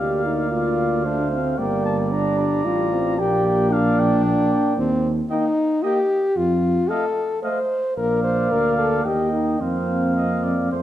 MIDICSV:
0, 0, Header, 1, 6, 480
1, 0, Start_track
1, 0, Key_signature, -2, "major"
1, 0, Tempo, 531915
1, 1432, Time_signature, 3, 2, 24, 8
1, 6708, Tempo, 540054
1, 8148, Tempo, 557103
1, 9673, End_track
2, 0, Start_track
2, 0, Title_t, "Trumpet"
2, 0, Program_c, 0, 56
2, 0, Note_on_c, 0, 77, 42
2, 1425, Note_on_c, 0, 79, 50
2, 1438, Note_off_c, 0, 77, 0
2, 1664, Note_off_c, 0, 79, 0
2, 1670, Note_on_c, 0, 81, 49
2, 1779, Note_off_c, 0, 81, 0
2, 1917, Note_on_c, 0, 82, 45
2, 2150, Note_off_c, 0, 82, 0
2, 2155, Note_on_c, 0, 82, 48
2, 2882, Note_on_c, 0, 79, 56
2, 2896, Note_off_c, 0, 82, 0
2, 3117, Note_off_c, 0, 79, 0
2, 3122, Note_on_c, 0, 79, 59
2, 3364, Note_on_c, 0, 77, 62
2, 3378, Note_off_c, 0, 79, 0
2, 3606, Note_on_c, 0, 79, 54
2, 3619, Note_off_c, 0, 77, 0
2, 3834, Note_off_c, 0, 79, 0
2, 3839, Note_on_c, 0, 79, 60
2, 4301, Note_off_c, 0, 79, 0
2, 4785, Note_on_c, 0, 79, 45
2, 4930, Note_off_c, 0, 79, 0
2, 5273, Note_on_c, 0, 79, 48
2, 5417, Note_off_c, 0, 79, 0
2, 6221, Note_on_c, 0, 77, 46
2, 6365, Note_off_c, 0, 77, 0
2, 6709, Note_on_c, 0, 77, 45
2, 6851, Note_off_c, 0, 77, 0
2, 7183, Note_on_c, 0, 77, 54
2, 8144, Note_on_c, 0, 79, 44
2, 8157, Note_off_c, 0, 77, 0
2, 8621, Note_off_c, 0, 79, 0
2, 8630, Note_on_c, 0, 77, 44
2, 9572, Note_off_c, 0, 77, 0
2, 9583, Note_on_c, 0, 72, 50
2, 9673, Note_off_c, 0, 72, 0
2, 9673, End_track
3, 0, Start_track
3, 0, Title_t, "Trumpet"
3, 0, Program_c, 1, 56
3, 0, Note_on_c, 1, 74, 41
3, 465, Note_off_c, 1, 74, 0
3, 470, Note_on_c, 1, 74, 41
3, 946, Note_on_c, 1, 72, 44
3, 960, Note_off_c, 1, 74, 0
3, 1424, Note_on_c, 1, 74, 50
3, 1438, Note_off_c, 1, 72, 0
3, 2857, Note_off_c, 1, 74, 0
3, 2862, Note_on_c, 1, 74, 54
3, 3336, Note_off_c, 1, 74, 0
3, 3344, Note_on_c, 1, 74, 58
3, 3817, Note_off_c, 1, 74, 0
3, 3829, Note_on_c, 1, 74, 52
3, 4297, Note_off_c, 1, 74, 0
3, 4776, Note_on_c, 1, 75, 48
3, 4921, Note_off_c, 1, 75, 0
3, 5253, Note_on_c, 1, 75, 51
3, 5398, Note_off_c, 1, 75, 0
3, 6224, Note_on_c, 1, 75, 47
3, 6368, Note_off_c, 1, 75, 0
3, 6703, Note_on_c, 1, 75, 43
3, 6845, Note_off_c, 1, 75, 0
3, 7190, Note_on_c, 1, 74, 49
3, 8114, Note_off_c, 1, 74, 0
3, 8150, Note_on_c, 1, 75, 42
3, 8626, Note_on_c, 1, 72, 37
3, 8639, Note_off_c, 1, 75, 0
3, 9060, Note_off_c, 1, 72, 0
3, 9095, Note_on_c, 1, 75, 49
3, 9338, Note_on_c, 1, 74, 40
3, 9350, Note_off_c, 1, 75, 0
3, 9574, Note_off_c, 1, 74, 0
3, 9579, Note_on_c, 1, 72, 49
3, 9673, Note_off_c, 1, 72, 0
3, 9673, End_track
4, 0, Start_track
4, 0, Title_t, "French horn"
4, 0, Program_c, 2, 60
4, 0, Note_on_c, 2, 67, 64
4, 226, Note_on_c, 2, 63, 60
4, 240, Note_off_c, 2, 67, 0
4, 458, Note_off_c, 2, 63, 0
4, 463, Note_on_c, 2, 65, 67
4, 938, Note_off_c, 2, 65, 0
4, 955, Note_on_c, 2, 62, 66
4, 1185, Note_off_c, 2, 62, 0
4, 1191, Note_on_c, 2, 60, 61
4, 1420, Note_off_c, 2, 60, 0
4, 1425, Note_on_c, 2, 58, 66
4, 1915, Note_on_c, 2, 62, 68
4, 1928, Note_off_c, 2, 58, 0
4, 2394, Note_on_c, 2, 65, 73
4, 2408, Note_off_c, 2, 62, 0
4, 2882, Note_on_c, 2, 67, 69
4, 2895, Note_off_c, 2, 65, 0
4, 3349, Note_on_c, 2, 62, 82
4, 3363, Note_off_c, 2, 67, 0
4, 4299, Note_off_c, 2, 62, 0
4, 4305, Note_on_c, 2, 60, 80
4, 4608, Note_off_c, 2, 60, 0
4, 4785, Note_on_c, 2, 63, 80
4, 5260, Note_on_c, 2, 67, 84
4, 5273, Note_off_c, 2, 63, 0
4, 5748, Note_on_c, 2, 65, 83
4, 5761, Note_off_c, 2, 67, 0
4, 6222, Note_on_c, 2, 69, 81
4, 6236, Note_off_c, 2, 65, 0
4, 6692, Note_off_c, 2, 69, 0
4, 6698, Note_on_c, 2, 72, 73
4, 7173, Note_off_c, 2, 72, 0
4, 7185, Note_on_c, 2, 70, 73
4, 7418, Note_off_c, 2, 70, 0
4, 7424, Note_on_c, 2, 72, 73
4, 7666, Note_on_c, 2, 70, 66
4, 7679, Note_off_c, 2, 72, 0
4, 7903, Note_off_c, 2, 70, 0
4, 7908, Note_on_c, 2, 69, 73
4, 8144, Note_off_c, 2, 69, 0
4, 8149, Note_on_c, 2, 67, 61
4, 8376, Note_off_c, 2, 67, 0
4, 8381, Note_on_c, 2, 63, 58
4, 8628, Note_on_c, 2, 60, 58
4, 8641, Note_off_c, 2, 63, 0
4, 9673, Note_off_c, 2, 60, 0
4, 9673, End_track
5, 0, Start_track
5, 0, Title_t, "Trombone"
5, 0, Program_c, 3, 57
5, 0, Note_on_c, 3, 58, 48
5, 953, Note_on_c, 3, 57, 48
5, 967, Note_off_c, 3, 58, 0
5, 1427, Note_off_c, 3, 57, 0
5, 1433, Note_on_c, 3, 55, 54
5, 2377, Note_off_c, 3, 55, 0
5, 2394, Note_on_c, 3, 55, 55
5, 2628, Note_off_c, 3, 55, 0
5, 2633, Note_on_c, 3, 60, 53
5, 2877, Note_on_c, 3, 58, 59
5, 2891, Note_off_c, 3, 60, 0
5, 3827, Note_off_c, 3, 58, 0
5, 3832, Note_on_c, 3, 58, 54
5, 4298, Note_off_c, 3, 58, 0
5, 4784, Note_on_c, 3, 58, 52
5, 4929, Note_off_c, 3, 58, 0
5, 5266, Note_on_c, 3, 58, 52
5, 5410, Note_off_c, 3, 58, 0
5, 6232, Note_on_c, 3, 57, 48
5, 6377, Note_off_c, 3, 57, 0
5, 6712, Note_on_c, 3, 57, 47
5, 6854, Note_off_c, 3, 57, 0
5, 7194, Note_on_c, 3, 58, 58
5, 8116, Note_off_c, 3, 58, 0
5, 8153, Note_on_c, 3, 58, 43
5, 8617, Note_off_c, 3, 58, 0
5, 8631, Note_on_c, 3, 58, 52
5, 9573, Note_off_c, 3, 58, 0
5, 9585, Note_on_c, 3, 57, 38
5, 9673, Note_off_c, 3, 57, 0
5, 9673, End_track
6, 0, Start_track
6, 0, Title_t, "Tuba"
6, 0, Program_c, 4, 58
6, 0, Note_on_c, 4, 38, 52
6, 1401, Note_off_c, 4, 38, 0
6, 1434, Note_on_c, 4, 31, 60
6, 2378, Note_off_c, 4, 31, 0
6, 2402, Note_on_c, 4, 33, 55
6, 2876, Note_on_c, 4, 34, 64
6, 2890, Note_off_c, 4, 33, 0
6, 4154, Note_off_c, 4, 34, 0
6, 4308, Note_on_c, 4, 39, 70
6, 4704, Note_off_c, 4, 39, 0
6, 5750, Note_on_c, 4, 41, 61
6, 6149, Note_off_c, 4, 41, 0
6, 7186, Note_on_c, 4, 34, 55
6, 7632, Note_off_c, 4, 34, 0
6, 7669, Note_on_c, 4, 38, 47
6, 8140, Note_off_c, 4, 38, 0
6, 8148, Note_on_c, 4, 39, 43
6, 8614, Note_off_c, 4, 39, 0
6, 8628, Note_on_c, 4, 41, 43
6, 9571, Note_off_c, 4, 41, 0
6, 9590, Note_on_c, 4, 41, 43
6, 9673, Note_off_c, 4, 41, 0
6, 9673, End_track
0, 0, End_of_file